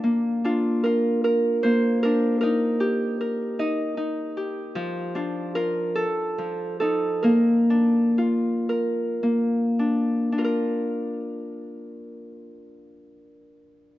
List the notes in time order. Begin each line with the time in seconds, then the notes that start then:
Already playing: D4 F4 A#4
0.04 A#3
0.44 D4 F4
0.84 F4 A#4
1.24 A#4
1.63 A#3 C5
2.03 D4 A#4
2.41 D#4 A#4
2.80 G4
3.21 A#4
3.59 D#4 D#5
3.97 D#4
4.37 G4
4.75 F3
5.15 D4 F4
5.55 F4 A#4
5.95 A4
6.38 F3
6.80 D#4 A4
7.23 A#3 A#4
7.70 D4
8.18 F4
8.69 A#4
9.23 A#3
9.79 D4
10.32 D4
10.38 F4 A#4
10.44 A#4